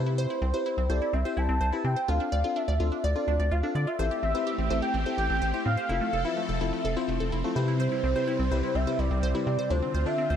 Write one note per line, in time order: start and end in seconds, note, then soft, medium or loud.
0.00 0.27 C3 loud
0.00 0.42 C4 loud
0.00 0.42 E4 medium
0.00 0.42 G4 medium
0.00 0.42 B4 loud
0.06 0.14 E4 medium
0.18 0.25 C5 loud
0.18 0.91 C5 loud
0.30 0.37 E4 medium
0.42 0.53 C2 loud
0.42 0.49 C4 medium
0.54 0.77 C4 medium
0.54 0.77 E4 medium
0.54 0.77 G4 medium
0.54 0.77 B4 medium
0.54 0.61 C5 medium
0.66 0.73 E4 medium
0.77 0.88 C2 loud
0.77 0.85 C4 medium
0.89 1.00 C2 loud
0.89 1.12 C4 medium
0.89 1.13 E4 medium
0.89 1.13 G4 medium
0.89 1.13 A4 medium
0.89 0.97 C5 medium
0.89 1.15 D5 loud
1.02 1.09 E4 medium
1.13 1.24 C2 loud
1.13 1.21 C4 medium
1.13 1.39 E5 loud
1.25 1.56 C4 medium
1.25 1.56 E4 medium
1.25 1.56 G4 medium
1.25 1.56 C5 medium
1.25 1.33 C5 medium
1.37 1.48 C2 loud
1.37 1.44 E4 medium
1.37 1.87 A5 loud
1.49 1.60 C2 loud
1.49 1.56 C4 medium
1.61 1.72 C2 loud
1.61 1.68 C5 medium
1.73 1.96 C4 medium
1.73 1.80 E4 medium
1.73 1.96 E4 medium
1.73 1.96 G4 medium
1.73 1.96 B4 medium
1.84 1.95 C3 medium
1.84 1.92 C4 medium
1.84 2.10 G5 loud
1.96 2.04 C5 medium
2.08 2.19 D2 loud
2.08 2.32 C4 medium
2.08 2.32 D4 medium
2.08 2.16 F4 loud
2.08 2.31 F4 medium
2.08 2.31 A4 medium
2.08 2.58 F5 loud
2.20 2.28 D4 medium
2.32 2.43 D2 loud
2.32 2.40 D5 medium
2.44 2.67 C4 medium
2.44 2.67 D4 medium
2.44 2.52 F4 medium
2.44 2.67 F4 medium
2.44 2.67 A4 medium
2.56 2.63 D4 medium
2.56 3.04 E5 loud
2.68 2.79 D2 loud
2.68 2.75 D5 medium
2.80 2.91 D2 loud
2.80 3.03 C4 medium
2.80 3.03 D4 medium
2.80 2.87 F4 medium
2.80 3.03 F4 medium
2.80 3.03 A4 medium
2.92 2.99 D4 medium
3.04 3.15 D2 loud
3.04 3.11 D5 loud
3.04 3.53 D5 loud
3.15 3.46 C4 medium
3.15 3.46 D4 medium
3.15 3.46 F4 medium
3.15 3.23 F4 medium
3.15 3.46 A4 medium
3.28 3.38 D2 loud
3.28 3.35 D4 medium
3.40 3.50 D2 loud
3.40 3.47 D5 medium
3.51 3.62 D2 loud
3.51 3.59 F4 medium
3.51 3.77 F5 loud
3.63 3.86 C4 medium
3.63 3.86 D4 medium
3.63 3.71 D4 medium
3.63 3.86 F4 medium
3.63 3.86 A4 medium
3.75 3.86 D3 loud
3.75 3.83 D5 medium
3.75 3.89 D5 loud
3.87 3.95 F4 medium
3.87 4.22 E5 loud
3.99 4.10 A1 loud
3.99 5.88 A3 medium
3.99 5.88 C4 medium
3.99 4.22 C4 medium
3.99 4.22 E4 medium
3.99 4.22 G4 medium
3.99 5.88 G4 medium
3.99 4.22 A4 medium
3.99 4.06 C5 loud
4.11 4.18 G4 medium
4.23 4.34 A1 loud
4.23 4.30 C4 medium
4.23 4.78 E5 loud
4.34 4.58 C4 medium
4.34 4.58 E4 medium
4.34 4.58 G4 medium
4.34 4.58 B4 medium
4.34 4.42 C5 medium
4.47 4.54 G4 medium
4.58 4.69 A1 loud
4.58 4.66 C4 medium
4.70 4.81 A1 loud
4.70 4.93 C4 medium
4.70 4.93 E4 medium
4.70 4.93 G4 medium
4.70 4.93 A4 medium
4.70 4.78 C5 medium
4.82 4.90 G4 medium
4.82 5.15 G5 loud
4.94 5.05 A1 loud
4.94 5.01 C4 medium
5.06 5.37 C4 medium
5.06 5.37 E4 medium
5.06 5.37 G4 medium
5.06 5.37 A4 medium
5.06 5.13 C5 medium
5.18 5.29 A1 loud
5.18 5.25 G4 medium
5.18 5.62 G5 loud
5.30 5.41 A1 loud
5.30 5.37 C4 medium
5.42 5.53 A1 loud
5.42 5.49 C5 medium
5.54 5.77 C4 medium
5.54 5.77 E4 medium
5.54 5.61 G4 medium
5.54 5.77 G4 medium
5.54 5.77 C5 medium
5.66 5.76 A2 loud
5.66 5.73 C4 medium
5.66 6.26 F5 loud
5.77 5.85 C5 medium
5.89 6.00 F1 loud
5.89 7.54 F3 medium
5.89 9.66 C4 medium
5.89 6.12 C4 medium
5.89 5.97 E4 loud
5.89 6.12 E4 medium
5.89 6.12 F4 medium
5.89 6.12 A4 medium
5.89 7.54 A4 medium
6.01 6.09 A3 medium
6.13 6.24 F1 loud
6.13 6.21 A4 medium
6.25 6.48 C4 medium
6.25 6.32 E4 medium
6.25 6.48 E4 medium
6.25 6.48 F4 medium
6.25 6.48 B4 medium
6.25 6.37 E5 medium
6.37 6.44 A3 medium
6.37 7.29 E5 medium
6.49 6.60 F1 loud
6.49 6.56 A4 medium
6.61 6.72 F1 loud
6.61 6.84 C4 medium
6.61 6.68 E4 medium
6.61 6.84 E4 medium
6.61 6.84 F4 medium
6.61 6.84 A4 medium
6.73 6.80 A3 medium
6.85 6.95 F1 loud
6.85 6.92 A4 loud
6.97 7.27 C4 loud
6.97 7.04 E4 medium
6.97 7.27 E4 medium
6.97 7.27 F4 medium
6.97 7.27 C5 loud
7.08 7.19 F1 loud
7.08 7.16 A3 medium
7.20 7.31 F1 loud
7.20 7.28 A4 medium
7.32 7.43 F1 loud
7.32 7.40 E4 medium
7.44 7.52 A3 medium
7.44 7.55 C4 medium
7.44 7.55 E4 medium
7.44 7.56 F4 medium
7.44 7.56 A4 loud
7.56 7.88 C3 loud
7.56 9.68 C3 medium
7.56 9.68 G3 medium
7.56 8.04 C4 medium
7.56 8.04 E4 medium
7.56 8.04 G4 medium
7.56 8.04 B4 loud
7.56 7.63 C5 medium
7.68 7.75 E4 medium
7.80 7.87 C5 loud
7.80 8.77 C5 loud
7.92 7.99 E4 medium
8.03 8.14 C2 loud
8.03 8.11 C4 medium
8.15 8.38 C4 medium
8.15 8.39 E4 medium
8.15 8.38 G4 medium
8.15 8.38 B4 medium
8.15 8.23 C5 medium
8.27 8.35 E4 medium
8.39 8.50 C2 loud
8.39 8.47 C4 medium
8.51 8.62 C2 loud
8.51 8.74 C4 loud
8.51 8.74 E4 medium
8.51 8.74 G4 medium
8.51 8.74 B4 loud
8.51 8.59 C5 medium
8.63 8.71 E4 medium
8.75 8.86 C2 loud
8.75 8.83 C4 loud
8.75 9.01 E5 loud
8.87 9.18 C4 medium
8.87 9.18 E4 medium
8.87 9.18 G4 medium
8.87 9.18 B4 medium
8.87 8.94 C5 medium
8.99 9.10 C2 loud
8.99 9.06 E4 medium
8.99 9.72 D5 loud
9.11 9.22 C2 loud
9.11 9.18 C4 medium
9.23 9.34 C2 loud
9.23 9.30 C5 loud
9.35 9.58 C4 medium
9.35 9.58 E4 medium
9.35 9.42 E4 medium
9.35 9.58 G4 medium
9.35 9.58 B4 medium
9.47 9.57 C3 medium
9.47 9.54 C4 medium
9.59 9.66 C5 medium
9.70 9.81 D2 loud
9.70 10.36 D3 medium
9.70 10.36 C4 medium
9.70 9.93 D4 medium
9.70 9.78 D4 loud
9.70 9.93 F4 medium
9.70 10.36 F4 medium
9.70 9.93 A4 medium
9.70 9.93 C5 medium
9.70 10.08 C5 loud
9.82 9.90 C4 medium
9.94 10.05 D2 loud
9.94 10.02 C5 medium
10.06 10.29 D4 medium
10.06 10.14 D4 medium
10.06 10.29 F4 medium
10.06 10.29 A4 medium
10.06 10.29 C5 medium
10.06 10.36 E5 loud
10.18 10.25 C4 medium
10.30 10.36 D2 loud
10.30 10.36 C5 medium